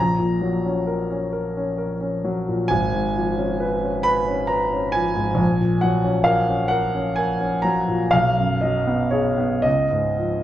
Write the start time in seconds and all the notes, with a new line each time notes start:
Already playing: A#1 A#5
0.19 A#2
0.42 F#3
0.66 C#4
0.87 A#4
1.10 C#4
1.33 A#4
1.57 C#4
1.78 A#4
2.01 C#4
2.25 F#3
2.48 A#2
2.68 G#1 G#5
2.93 G#2
3.15 F3
3.37 C#4
3.60 B4
3.82 C#4
4.03 B4 B5
4.28 C#4
4.47 B4 A#5
4.73 C#4
4.92 F3 G#5
5.16 G#2
5.34 A#1
5.61 A#2
5.81 F#3 F#5
6.04 C#4
6.24 A#4 F5
6.48 C#4
6.68 A#4 F#5
6.95 C#4
7.16 A#4 G#5
7.41 C#4
7.62 F#3 A#5
7.88 A#2
8.11 B1 F5
8.37 F#2
8.61 F#3 D#5
8.87 B3
9.11 G#4 C#5
9.38 B3
9.62 C#2 D#5
9.91 G#2
10.18 F3